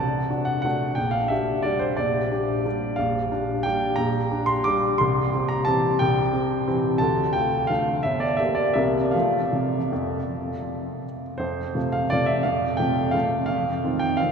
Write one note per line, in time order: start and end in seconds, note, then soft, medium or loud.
0.00 0.30 C2 soft
0.00 0.47 A5 medium
0.30 0.61 D4 soft
0.30 0.62 F#4 soft
0.45 0.60 F#5 medium
0.62 0.95 A3 soft
0.62 0.95 D4 soft
0.62 0.95 F#4 soft
0.62 0.97 F#5 medium
0.95 1.29 A#1 soft
0.95 1.13 G5 medium
1.11 1.29 F5 medium
1.28 1.61 D4 soft
1.28 1.62 G4 soft
1.28 1.64 E5 medium
1.62 1.96 G3 soft
1.62 1.96 D4 soft
1.62 1.96 G4 soft
1.62 1.81 D5 medium
1.79 1.97 C5 medium
1.97 2.31 A#1 soft
1.97 2.98 D5 medium
2.31 2.62 D4 soft
2.31 2.62 G4 soft
2.65 2.95 G3 soft
2.65 2.96 D4 soft
2.65 2.96 G4 soft
2.96 3.31 A#1 soft
2.96 3.64 F5 medium
3.32 3.62 D4 soft
3.32 3.62 G4 soft
3.63 3.95 G3 soft
3.63 3.96 D4 soft
3.63 3.96 G4 soft
3.63 3.97 G5 medium
3.96 4.29 A#1 soft
3.96 4.46 A#5 medium
4.31 4.62 D4 soft
4.31 4.62 G4 soft
4.46 4.64 C6 medium
4.64 4.96 G3 soft
4.64 4.96 D4 soft
4.64 4.97 G4 soft
4.64 4.98 D6 medium
4.98 5.31 C2 soft
4.98 5.48 C6 medium
5.34 5.63 C4 soft
5.34 5.64 G4 soft
5.49 5.65 A#5 medium
5.65 5.97 E3 soft
5.65 5.97 C4 soft
5.65 5.97 G4 soft
5.65 5.99 A5 medium
5.99 6.32 C2 soft
5.99 7.01 G5 medium
6.33 6.64 C4 soft
6.33 6.64 G4 soft
6.68 6.98 E3 soft
6.68 6.98 C4 soft
6.68 6.98 G4 soft
6.98 7.34 D2 soft
6.98 7.33 A5 medium
7.33 7.67 A3 soft
7.33 7.67 F4 soft
7.33 7.69 G5 medium
7.67 8.01 D3 soft
7.67 8.01 A3 soft
7.67 8.02 F4 soft
7.67 8.03 F5 medium
8.03 8.38 G1 soft
8.03 8.21 E5 medium
8.20 8.38 D5 medium
8.37 8.73 A#3 soft
8.37 8.73 G4 soft
8.37 8.56 E5 medium
8.55 8.75 D5 medium
8.73 9.13 C2 soft
8.73 9.10 C3 soft
8.73 9.11 A#3 soft
8.73 9.11 G4 soft
8.73 9.13 E5 medium
9.11 9.41 F3 soft
9.11 9.45 A3 soft
9.11 9.44 F4 soft
9.11 11.21 F5 medium
9.53 9.80 C3 soft
9.92 10.18 F2 soft
11.38 11.75 F2 soft
11.38 11.93 C5 medium
11.75 12.08 C3 soft
11.75 12.08 A3 soft
11.75 12.08 F4 soft
11.92 12.11 F5 medium
12.10 12.43 C3 soft
12.10 12.43 A3 soft
12.10 12.44 F4 soft
12.10 12.29 D5 medium
12.26 12.45 E5 medium
12.43 12.78 F2 soft
12.43 12.78 F5 medium
12.77 13.11 C3 soft
12.77 13.11 A3 soft
12.77 13.11 F4 soft
12.77 13.13 G5 medium
13.11 13.45 C3 soft
13.11 13.45 A3 soft
13.11 13.44 F5 medium
13.15 13.46 F4 soft
13.46 13.82 F2 soft
13.46 13.99 F5 medium
13.84 14.16 D#3 soft
13.84 14.16 C4 soft
13.84 14.16 F4 soft
13.99 14.18 G5 medium
14.17 14.32 D#3 soft
14.17 14.32 C4 soft
14.17 14.32 F4 soft
14.17 14.32 F5 medium